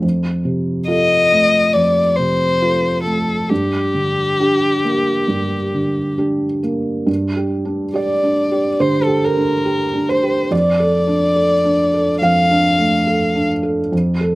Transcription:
0.02 F2
0.45 C3
0.88 F4 A4 D#5
1.32 A3
1.73 F2 D5
2.16 C3 C5
2.62 F4 A4
3.03 A3 A4
3.49 G2 G4
3.94 D3
4.40 D4 G4
4.84 A#3
5.28 G2
5.74 D3
6.18 D4 G4
6.63 A#3
7.07 G2
7.36 G4
7.65 D4
7.94 G4 D5
8.23 D4
8.51 G4
8.80 D3 C5
9.02 A4
9.07 G4
9.24 A#4
9.37 D4
9.65 G4
9.94 D4
10.09 C5
10.23 G4
10.51 F2 D5
10.80 A4
11.07 D4
11.36 A4
11.65 D4
11.94 A4
12.22 F2 F5
12.51 D4
12.78 A3
13.07 A4
13.35 D4
13.63 A4
13.92 F2
14.21 A4

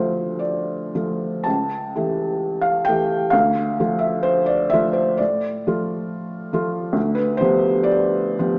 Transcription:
Already playing: D2 F3 A3 F4 C5
0.39 D5
0.95 F3 A3 F4
1.44 C#2 A5
1.95 E3 A3 G4
2.61 F5
2.85 E3 A3 G5
2.89 G4
3.30 D2 F5
3.80 F3 A3 F4
3.99 E5
4.23 C5
4.46 D5
4.70 F3 A3 F4 E5
4.93 C5
5.17 A2 D5
5.67 F3 A3 F4
6.53 F3 A3 F4
6.93 D2
7.15 B4
7.37 F3 B3 G4 C5
7.83 D5
8.39 F3 B3 G4

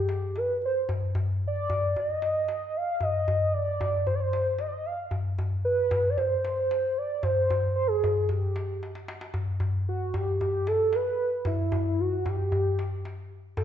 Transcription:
Already playing: G4
0.09 darbuka tek
0.22 darbuka ka
0.36 B4, darbuka tek
0.62 C5, darbuka ka
0.89 darbuka dum
1.15 darbuka dum
1.47 D5
1.56 darbuka ka
1.70 darbuka dum
1.96 D#5, darbuka dum
2.10 darbuka ka
2.22 darbuka tek
2.35 darbuka ka
2.48 darbuka tek
2.76 F5
3.00 D#5, darbuka dum
3.28 darbuka dum
3.53 D5
3.68 darbuka ka
3.81 darbuka dum
4.07 C5, darbuka dum
4.15 D5
4.20 C5, darbuka ka
4.33 darbuka tek
4.46 darbuka ka
4.59 D#5, darbuka tek
4.67 D5
4.72 D#5
4.86 F5
5.11 darbuka dum
5.38 darbuka dum
5.65 B4
5.78 darbuka ka
5.91 darbuka dum
6.09 D5
6.17 C5, darbuka dum
6.32 darbuka ka
6.45 darbuka tek
6.57 darbuka ka
6.71 darbuka tek
6.98 D5
7.23 C5, darbuka dum
7.50 darbuka dum
7.76 C5
7.87 G#4
8.04 darbuka dum
8.17 darbuka ka
8.22 G#4
8.29 G4, darbuka dum
8.42 darbuka ka
8.56 darbuka tek
8.69 darbuka ka
8.83 darbuka tek
8.95 darbuka ka
9.08 darbuka tek
9.21 darbuka ka
9.34 darbuka dum
9.60 darbuka dum
9.89 F#4
10.14 G4, darbuka dum
10.28 darbuka ka
10.41 G4, darbuka dum
10.54 darbuka ka
10.67 A4, darbuka tek
10.93 B4, darbuka tek
11.07 darbuka ka
11.45 E4, darbuka dum
11.72 darbuka dum
12.00 F#4
12.26 G4, darbuka dum
12.39 darbuka ka
12.52 darbuka dum
12.65 darbuka ka
12.79 darbuka tek
13.05 darbuka tek
13.18 darbuka ka
13.57 A4, darbuka dum

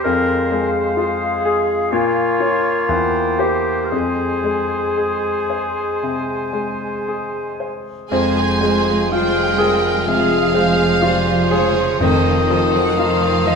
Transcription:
Already playing: C5
0.04 F2 G#3 A#4 F5
0.52 G#3
0.95 F4 G#4
1.45 G#4
1.92 A#2 A#3 F4 C#5
2.40 F4 C#5
2.89 E2 C5 G5
3.39 G4 C5
3.85 A#4
3.90 F2 G#3 G#4 G#5
4.44 G#3
4.97 G#4
5.50 C5
6.03 C3
6.53 G#3
7.08 G#4
7.60 C5
8.10 F1 F2 F3 G#3 F4 G#4 C5 G#5 C6
8.35 F3 F4 G#4
8.60 G#3 F4 G#4 C5
8.86 F3 F4 G#4
9.11 G3 G#3 F4 C5 G5 F6
9.15 G#4 C5
9.36 F3 F4 G#4
9.58 G#3 F4 G#4 A#4 C5
9.84 F3 F4 G#4
10.05 C3 F3 G#3 F4 G#4 F5 F6
10.09 G#4 C5
10.29 F3 F4 G#4
10.53 G#3 F4 G#4 C5
10.78 F3 F4 G#4
11.02 G3 G#3 F4 G#4 C5 C6
11.24 F3 F4 G#4
11.50 C#3 F3 G#3 F4 G#4 C5 C#5
11.75 F3 G#4
11.79 F4
12.00 F1 F2 D#3 F3 D#4 A4 C5 D#5 D#6
12.25 F3 C4 F4 A4
12.50 D#3 F3 D#4 A4 C5
12.74 F3 F#3 C4 F4 A4 F#5
12.97 D#3 F3 D#4 F4 A4 C5 F5
13.21 F3 C4 F4 A4
13.47 D#3 F3 D#4 A4 C5 D#5

